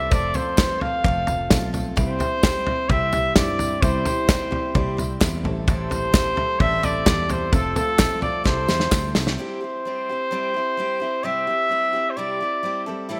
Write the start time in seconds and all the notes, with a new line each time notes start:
Already playing: A1 A2 G3 C4 E4 A4 B4 C5 D5 E5
0.10 F1 F2 F3 A3 C4 F4 A4 C5 D5, kick, floor tom, tambourine
0.34 F3 A3 C4 F4 A4 C5, floor tom, tambourine
0.57 F3 A3 C4 F4 B4, kick, snare, clap, floor tom, tambourine
0.61 A4
0.81 C4 F4 A4 F5, floor tom
1.04 F1 F3 A3 C4 F4 A4 C5, kick, clap, floor tom, tambourine
1.27 C4 F4 A4, floor tom, tambourine
1.50 B1 F3 A3 C4 F4 A4 C5, kick, snare, clap, floor tom, tambourine
1.73 C4 F4 A4, floor tom, tambourine
1.96 C2 C3 G3 C4 E4 G4 C5 E5, kick, floor tom, tambourine
2.19 G3 C4 E4 G4 C5 G5, floor tom, tambourine
2.43 G3 C4 E4 G4 C5 G5, kick, snare, clap, floor tom, tambourine
2.66 C4 E4 G4, floor tom
2.89 C2 C3 G3 C4 E4 G4 C5 E5, kick, floor tom
3.12 C4 E4 G4, floor tom, tambourine
3.36 G2 G3 C4 E4 G4 C5 D5 E5, kick, snare, clap, floor tom, tambourine
3.59 C4 E4 G4, floor tom, tambourine
3.82 C2 C3 G3 C4 E4 G4 C5 E5, kick, floor tom, tambourine
4.05 G3 C4 E4 G4 C5, floor tom, tambourine
4.27 G3 C4 E4 G4 C5 D5, kick, snare, clap, floor tom, tambourine
4.51 C4 E4 G4, floor tom
4.74 C2 C3 G3 C4 E4 G4 C5 D5, kick, floor tom
4.97 C4 E4 G4, floor tom, tambourine
5.20 E2 G3 C4 E4 G4 C5 E5, kick, snare, clap, floor tom, tambourine
5.44 A1 A2 G3 A3 C4 E4 G4 A4 C5, floor tom
5.67 A2 E3 G3 C4 E4 A4 C5, kick, floor tom, tambourine
5.90 G3 C4 E4 A4 C5, floor tom, tambourine
6.12 G3 C4 E4 A4 C5, kick, snare, clap, floor tom, tambourine
6.36 G3 C4 E4 A4, floor tom
6.60 A1 A2 E3 G3 C4 E4 A4 D5 E5, kick, floor tom
6.83 G3 C4 E4 A4 D5, floor tom, tambourine
7.06 E2 G3 C4 E4 A4 D5, kick, snare, clap, floor tom, tambourine
7.29 G3 C4 E4 A4 C5, floor tom, tambourine
7.53 F1 F2 F3 A3 C4 F4 A4 C5, kick, floor tom, tambourine
7.76 F3 A3 C4 F4 A4 C5, floor tom, tambourine
7.99 F3 A3 C4 F4 A4 C5, kick, snare, clap, floor tom, tambourine
8.21 C4 F4 A4 D5, floor tom, tambourine
8.44 C2 C3 G3 C4 E4 A4 C5, kick, snare, clap, tambourine
8.68 E2 C4 E4 A4, snare, tambourine
8.80 snare
8.91 D2 G3 C4 E4 A4 C5, kick, snare, clap, tambourine
9.15 C2 C4 E4 A4, snare, tambourine
9.27 snare
9.38 C3 G3 C4 E4 G4 C5
9.61 C4 E4 G4
9.85 G3 C4 E4 G4
10.09 C4 E4 G4
10.31 C3 G3 C4 E4 G4
10.54 C4 E4 G4
10.77 G3 C4 E4 G4
11.00 C4 E4 G4
11.23 C3 G3 C4 E4 G4 E5
11.47 C4 E4 G4
11.69 G3 C4 E4 G4
11.93 C4 E4 G4
12.10 C5
12.17 C3 G3 C4 E4 G4 D5
12.40 C4 E4 G4
12.63 G3 C4 E4 G4
12.86 G3 C4 E4 A4
13.09 A2 E3 G3 C4 E4 A4 E5